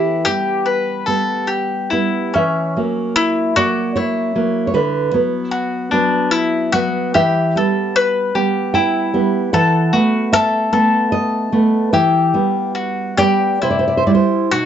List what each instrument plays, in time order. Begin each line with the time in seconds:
Already playing: nylon-string guitar E3 G4, mandolin E4
0.25 nylon-string guitar G3 B3, mandolin G4
0.66 mandolin B4
1.06 nylon-string guitar G3 B3, mandolin A4
1.47 mandolin G4
1.90 nylon-string guitar G3 B3, mandolin E4
2.34 nylon-string guitar E3 E5, mandolin C#4
2.76 nylon-string guitar F#3 A#3
3.16 mandolin E4
3.56 nylon-string guitar F#3 A#3 D5, mandolin F#4
3.96 mandolin E4, nylon-string guitar C#5
4.35 nylon-string guitar F#3 A#3
4.67 nylon-string guitar C#5
4.74 nylon-string guitar D3 B4
5.13 nylon-string guitar F#3 B3
5.51 mandolin F#4
5.91 nylon-string guitar F#3 B3, mandolin D4
6.31 mandolin E4
6.72 nylon-string guitar F#3 B3, mandolin F#4
7.14 nylon-string guitar E3 E5, mandolin G4
7.56 nylon-string guitar G3 B3, mandolin A4
7.96 mandolin B4
8.35 nylon-string guitar G3 B3, mandolin G4
8.74 mandolin E4, nylon-string guitar G5
9.14 nylon-string guitar G3 B3
9.53 nylon-string guitar E3 F#5, mandolin A4
9.93 nylon-string guitar A3 B3, mandolin F#4
10.33 mandolin A4, nylon-string guitar E5
10.73 nylon-string guitar A3 B3, mandolin A4
11.12 nylon-string guitar D#5
11.52 nylon-string guitar A3 B3
11.93 nylon-string guitar E3 E5, mandolin G4
12.34 nylon-string guitar G3 B3
12.75 mandolin F#4
13.17 nylon-string guitar G3 B3 D5, mandolin G4
13.62 nylon-string guitar C3 C5, mandolin E4
13.70 nylon-string guitar D5
13.79 nylon-string guitar C5
13.88 nylon-string guitar D5
13.97 nylon-string guitar C5
14.06 nylon-string guitar G3 E4 D5
14.15 nylon-string guitar C5
14.51 nylon-string guitar B2 D#4, mandolin F#4